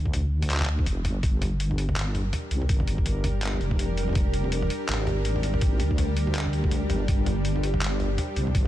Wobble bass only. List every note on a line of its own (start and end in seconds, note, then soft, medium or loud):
0.00 0.86 D2 medium
0.87 1.06 F1 loud
1.05 1.22 G1 medium
1.23 2.32 G1 loud
2.51 2.68 C2 medium
2.69 2.97 G1 loud
2.98 3.60 G1 medium
3.61 4.70 F1 medium
4.89 5.82 G#1 loud
5.80 6.91 D2 medium
6.90 7.07 G1 medium
7.08 8.17 G1 loud
8.37 8.54 C2 medium
8.55 8.68 G1 loud